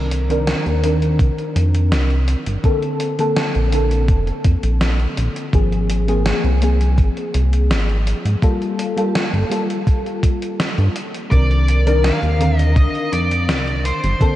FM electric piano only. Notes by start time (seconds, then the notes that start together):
Already playing: D#3 C4 D4 A#4
0.30 D#3 C4 D4 A#4
0.82 D#3 C4 D4 A#4
2.63 D3 A#3 C4 A4
3.18 D3 A#3 C4 A4
3.72 D3 A#3 C4 A4
5.53 F3 A#3 C4 G#4
6.08 F3 A#3 C4 G#4
6.61 F3 A#3 C4 G#4
8.42 G3 A#3 F4 A4
8.96 G3 A#3 F4 A4
9.50 G3 A#3 F4 A4
11.31 D#3 C4 D4 A#4
11.86 D#3 C4 D4 A#4
12.39 D3 D#3 C4 A#4
14.20 D3 A#3 C4 A4